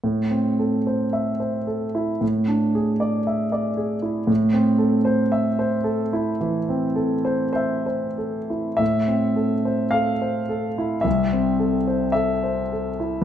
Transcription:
\new Staff \with { instrumentName = "Grand piano" } { \time 4/4 \key a \minor \tempo 4 = 55 << { r1 | r2. c''4 | e''4 f''4 e''4 e''4 | } \\ { a,16 c'16 a'16 c''16 e''16 c''16 a'16 e'16 a,16 d'16 gis'16 d''16 e''16 d''16 gis'16 e'16 | a,16 c'16 a'16 c''16 e''16 c''16 a'16 e'16 e16 c'16 a'16 c''16 e''16 c''16 a'16 e'16 | a,16 c'16 a'16 c''16 a'16 c''16 a'16 e'16 c,16 c'16 a'16 c''16 a'16 c''16 a'16 e'16 | } >> }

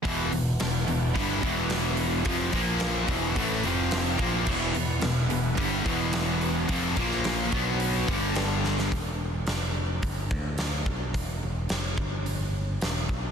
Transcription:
<<
  \new Staff \with { instrumentName = "Analog synth pad" } { \time 4/4 \key e \minor \tempo 4 = 108 <e' b' fis''>1~ | <e' b' fis''>8 <ais eis' c''>4 <e' b' fis''>4 <f' c'' g''>4 <e' b' fis''>8~ | <e' b' fis''>1~ | <e' b' fis''>8 <ais eis' c''>4 <b fis' b'>4 <g d' a'>4. |
r1 | r1 | }
  \new Staff \with { instrumentName = "Distorted electric guitar" } { \clef bass \time 4/4 \key e \minor <e, b, e>8 <e, b,>8 <e, b,>8 <e, b,>8 <g, d g>8 <e, b, e>4. | <f, c f>8 <ais, eis ais>4 <e, b, e>8 <a, e a>8 <f, c f>4 <ais, f ais>8 | <e, b, e>8 <e, b,>8 <e, b,>8 <e, b,>8 <g, d g>8 <e, b, e>4. | <f, c f>8 <ais, eis ais>4 <b, fis b>4 <g, d g>4. |
r1 | r1 | }
  \new Staff \with { instrumentName = "Distorted electric guitar" } { \clef bass \time 4/4 \key e \minor <e, b, e>8 <e, b,>8 <e, b,>8 <e, b,>8 <g, d g>8 <e, b, e>4. | <f, c f>8 <ais, eis ais>4 <e, b, e>8 <a, e a>8 <f, c f>4 <ais, f ais>8 | <e, b, e>8 <e, b,>8 <e, b,>8 <e, b,>8 <g, d g>8 <e, b, e>4. | <f, c f>8 <ais, eis ais>4 <b, fis b>4 <g, d g>4. |
r1 | r1 | }
  \new Staff \with { instrumentName = "Overdriven electric guitar" } { \clef bass \time 4/4 \key e \minor <e, b, e>8 <e, b,>8 <e, b,>8 <e, b,>8 <g, d g>8 <e, b, e>4. | <f, c f>8 <ais, eis ais>4 <e, b, e>8 <a, e a>8 <f, c f>4 <ais, f ais>8 | <e, b, e>8 <e, b,>8 <e, b,>8 <e, b,>8 <g, d g>8 <e, b, e>4. | <f, c f>8 <ais, eis ais>4 <b, fis b>4 <g, d g>4. |
r1 | r1 | }
  \new Staff \with { instrumentName = "Picked electric bass" } { \clef bass \time 4/4 \key e \minor e,,8 e,,8 e,,8 e,,8 g,,8 e,,4. | r8 ais,,4 e,,8 a,,8 f,,4 ais,,8 | e,,8 e,,8 e,,8 e,,8 g,,8 e,,4. | f,,8 ais,,4 b,,4 g,,4. |
e,,4 f,,4 g,,8 d,4 b,,8 | e,,8 e,,8 f,,8 g,,4. e,,8 b,,8 | }
  \new DrumStaff \with { instrumentName = "Drums" } \drummode { \time 4/4 <hho bd>8 hho8 <hho sn>8 hho8 <hho bd>8 <hho bd>8 <hho sn>8 hho8 | <hho bd>8 <hho bd>8 <hho sn>8 <hho bd>8 <hho bd>8 hho8 <hho sn>8 <hho bd>8 | <cymc bd>8 hho8 <hho sn>8 hho8 <hho bd>8 <hho bd>8 <hho sn>8 hho8 | <hho bd>8 <hho bd>16 sn16 <hho sn>8 <hho bd>8 hho8 <hho bd>8 <hho sn>8 sn16 sn16 |
<hho bd>4 <hho sn>4 <hho bd>8 bd8 <hho sn>8 bd8 | <hho bd>4 <hho sn>8 bd8 hho4 <hho sn>8 bd8 | }
>>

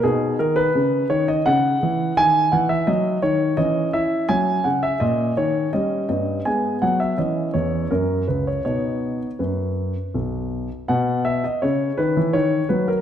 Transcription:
<<
  \new Staff \with { instrumentName = "Grand piano" } { \time 3/4 \key b \major \tempo 4 = 83 << { gis'8 ais'16 b'8. cis''16 dis''16 fis''4 | gis''8 fis''16 e''16 dis''8 cis''8 dis''8 e''8 | gis''8 fis''16 e''16 dis''8 cis''8 dis''8 dis''8 | gis''8 fis''16 e''16 dis''8 cis''8 ais'8 b'16 cis''16 |
cis''4 b'4 r4 | fis''8 e''16 dis''16 cis''8 b'8 cis''8 b'16 ais'16 | } \\ { dis'2. | dis'2 cis'4 | cis'2 cis'4 | b4 cis'4 cis'4 |
r2. | r2. | } >> }
  \new Staff \with { instrumentName = "Grand piano" } { \clef bass \time 3/4 \key b \major b,8 dis8 cis8 dis8 cis8 e8 | dis8 e8 fis8 dis8 e8 e'8 | fis8 cis8 ais,8 dis8 g8 g,8 | gis8 fis8 e8 e,8 fis,8 cis,8 |
<b, b dis'>4 fis,4 b,,4 | b,4 cis8 dis16 e16 dis8 fis8 | }
>>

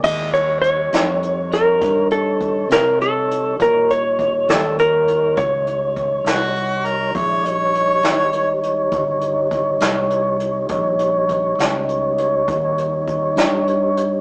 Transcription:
<<
  \new Staff \with { instrumentName = "Harmonica" } { \time 12/8 \key ees \mixolydian \tempo 4. = 67 r1. | r1 r8 ges'4 bes'8 | des''8 des''2 r2. r8 | r1. | }
  \new Staff \with { instrumentName = "Electric slide guitar" } { \time 12/8 \key ees \mixolydian ees''8 des''8 des''4. bes'4 a'4 bes'8 a'4 | bes'8 des''4 a'8 bes'4 des''2 r4 | r1. | r1. | }
  \new Staff \with { instrumentName = "Tonewheel organ" } { \time 12/8 \key ees \mixolydian <aes fes' d''>8 <g ees' des''>1~ <g ees' des''>4. | <g ees' des''>1. | <aes fes' d''>8 <g ees' des''>1~ <g ees' des''>4. | <g ees' des''>1. | }
  \new Staff \with { instrumentName = "Fingered electric bass" } { \clef bass \time 12/8 \key ees \mixolydian ees,4. f,4. g,4. c4. | bes,4. ees,4. des,4. c,4. | bes,,4. aes,,4. g,,4. c,4. | bes,,4. des,4. ees,4. g,4. | }
  \new DrumStaff \with { instrumentName = "Drums" } \drummode { \time 12/8 <cymc bd>8 hh8 hh8 <hh sn>8 hh8 <hh sn>8 <hh bd sn>8 hh8 <hh bd>8 <hh sn>8 hh8 hh8 | <hh bd>8 hh8 <hh bd>8 <hh sn>8 hh8 hh8 <hh bd>8 hh8 <hh bd>8 <hh sn>8 hh8 hh8 | <hh bd>8 hh8 hh8 <hh sn>8 hh8 hh8 <hh bd>8 hh8 <hh bd>8 <hh sn>8 hh8 hh8 | <hh bd>8 hh8 <hh bd>8 <hh sn>8 hh8 hh8 <hh bd>8 hh8 <hh bd>8 <hh sn>8 hh8 hh8 | }
>>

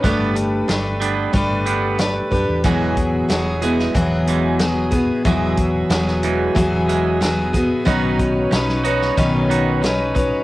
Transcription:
<<
  \new Staff \with { instrumentName = "Tonewheel organ" } { \time 4/4 \key e \major \tempo 4 = 92 <d' g' a' b'>1 | <e' fis' gis' b'>1 | <fis' gis' b' e''>1 | <dis' fis' b' cis''>1 | }
  \new Staff \with { instrumentName = "Steel-string acoustic guitar" } { \time 4/4 \key e \major <g a d' g' b'>4 <a d' g' b'>4 <g a d' g' b'>4 <a d' g' b'>8 <d' g' b'>8 | <e fis b fis' gis'>4 <fis b fis' gis'>8 <b fis' gis'>8 <e fis b fis' gis'>4 <fis b fis' gis'>8 <b fis' gis'>8 | <e fis b fis' gis'>4 <fis b fis' gis'>4 <e fis b fis' gis'>4 <fis b fis' gis'>8 <b fis' gis'>8 | <b, dis fis cis' dis' b'>4 <fis cis' dis' b'>8 <fis cis' dis' b'>8 <b, dis fis cis' dis' b'>4 <fis cis' dis' b'>8 <fis cis' dis' b'>8 | }
  \new Staff \with { instrumentName = "Clean electric guitar" } { \clef bass \time 4/4 \key e \major <g b d'>8 <g d'>8 <g d'>8 <g b d'>8 r8 <g b d'>8 <g d'>8 <g d'>8 | <e, e gis>8 e,8 <e, e>8 <e, e gis>8 r8 <e, e gis>8 r8 <e, e>8 | <e, e gis>8 r8 <e, e>8 <e, e gis>8 e,8 <e, e gis>8 <e, e>8 <e, e>8 | <b dis' fis'>8 <b dis'>8 <b dis'>8 <b dis' fis'>8 <b dis'>8 <b dis' fis'>8 <b dis'>8 <b dis'>8 | }
  \new Staff \with { instrumentName = "Fingered electric bass" } { \clef bass \time 4/4 \key e \major g,,4 g,,4 g,,4. fis,16 e,16 | e,,4 e,,4 e,,2 | e,,4 e,,4 e,,2 | b,,4 b,,4 b,,2 | }
  \new DrumStaff \with { instrumentName = "Drums" } \drummode { \time 4/4 <hh bd>8 hh8 <hh sn>8 hh8 <hh bd>8 hh8 <hh sn>8 <hh bd>8 | <hh bd>8 <hh bd>8 <hh sn>8 hh16 sn16 <hh bd>8 hh8 <hh sn>8 <hh bd>8 | <hh bd>8 <hh bd>8 <hh sn>16 sn16 hh8 <hh bd>8 hh8 <hh sn>8 <hh bd>8 | <hh bd>8 <hh bd>8 <hh sn>16 sn16 hh16 sn16 <hh bd>8 hh8 <hh sn>8 <hh bd>8 | }
>>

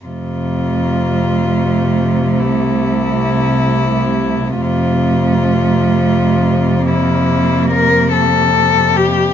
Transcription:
<<
  \new Staff \with { instrumentName = "Cello" } { \time 6/8 \key f \major \tempo 4. = 52 f'2. | e'2. | f'2. | e'4 bes'8 a'4 g'8 | }
  \new Staff \with { instrumentName = "Cello" } { \time 6/8 \key f \major a2.~ | a2. | a2. | bes2~ bes8. r16 | }
  \new Staff \with { instrumentName = "Cello" } { \clef bass \time 6/8 \key f \major c2.~ | c2. | c2.~ | c2~ c8. r16 | }
  \new Staff \with { instrumentName = "Cello" } { \clef bass \time 6/8 \key f \major f,2. | c,2. | f,2.~ | f,2~ f,8. r16 | }
>>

